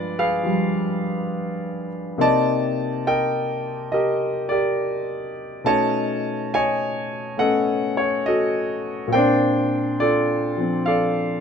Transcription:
grand piano
Already playing: G2 F3 G#3 B3 F4 B4 D5
0.19 G#4 B4 F5
0.43 F3 G3
2.18 C3 A#3 C4 D#4 D5 D#5 A5
3.07 A#4 D#5 G5
3.92 G4 A#4 D#5
4.49 G4 A#4 D5
5.64 B2 A3 C#4 D#4 C#5 D#5 A5
6.54 C#5 D#5 G#5
7.37 A3 B3 C#4 A4 D#5 F#5
7.97 C#5
8.26 F#4 A4 D#5
9.08 A#2 A#3
9.13 C4 C5 D5 G5
9.18 D4
10.00 F4 A4 D5
10.57 F3 C4
10.86 A4 D5 F5

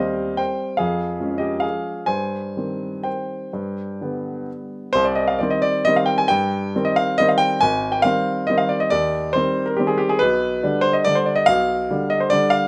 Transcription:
grand piano
Already playing: D#2 G4 C5 D#5 F5
0.00 G3 C4
0.37 C5 G5
0.77 F2 G#4 F5
1.20 F3 G#3 C#4
1.38 G4 D#5
1.60 G#4 F5
2.06 G2 C5 G#5
2.57 D#3 G3 C4
3.04 C5 G5
3.53 G2
4.01 D3 G3 B3
4.93 C2 C5
5.04 D5
5.15 D#5
5.28 F5
5.39 D#3 G3 C4 D5
5.50 D#5
5.62 D5
5.85 D#3 G3 C4 D#5
5.96 F5
6.06 G5
6.18 G#5
6.28 G2 G5
6.75 D#3 G3 C4
6.85 D#5
6.96 F5
7.18 D#3 G3 C4 D#5
7.29 F5
7.38 G5
7.61 G#1 G#5
7.92 G5
8.02 D#3 G3 C4 F5
8.47 D#3 G3 C4 D#5
8.58 F5
8.69 D5
8.80 D#5
8.90 D#2 D5
9.33 D#3 G3 C4 C5
9.66 A#4
9.77 D#3 G3 C4 G4
9.87 G#4
9.98 G4
10.09 G#4
10.19 B1 B4
10.63 D3 G3 D4
10.81 C5
10.93 D#5
11.05 D3 G3 D4 D5
11.15 C5
11.26 D5
11.36 D#5
11.46 B1 F5
11.90 D3 G3 D4
12.10 D#5
12.20 C5
12.30 D3 G3 D4 D5
12.50 F5

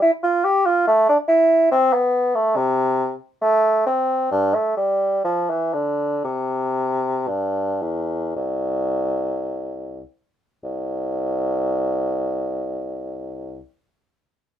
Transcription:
bassoon
0.02 E4
0.23 F4
0.44 G4
0.66 F4
0.87 A3
1.09 D4
1.28 E4
1.72 C4
1.93 B3
2.35 A3
2.56 C3
3.42 A3
3.86 C4
4.31 G2
4.55 A3
4.77 G3
5.24 F3
5.50 E3
5.73 D3
6.24 C3
7.28 G2
7.82 E2
8.36 C2
10.64 C2

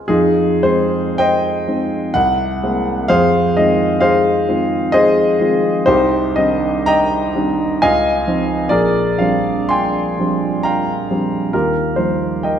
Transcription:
grand piano
Already playing: G#5 C6 F6
0.08 F2 D#4 F4 G#4
0.63 G#3 C4 D#4 C5
1.18 C5 D#5 G5
1.68 G#3 C4 D#4
2.14 C2 F#5
2.63 G#3 A#3 C4 E4
3.08 F2 G#4 C5 F5
3.57 D#3 G#3 C4 F4 D#5
4.00 G#4 C5 F5
4.49 D#3 G#3 C4 F4
4.92 G#4 C5 D#5
5.40 D#3 G#3 C4 F4
5.86 C2 D#4 G4 C5
6.36 D#3 G3 C4 D4 D#5
6.86 D#5 G5 A#5
7.35 D#3 G3 C4 D4
7.82 C#2 D#5 F5 G#5
8.27 F3 C4 D#4
8.69 A#1 G#4 A#4 D5
9.18 F3 G3 C4 D4 F5
9.69 G5 G#5 C6
10.19 F3 G3 C4 D4
10.63 F5 G5 A#5
11.11 F3 G3 C4 D4
11.53 D#2 F4 G4 A#4
11.96 F3 G3 A#3 D#4 C5
12.43 A#4 D#5 G5

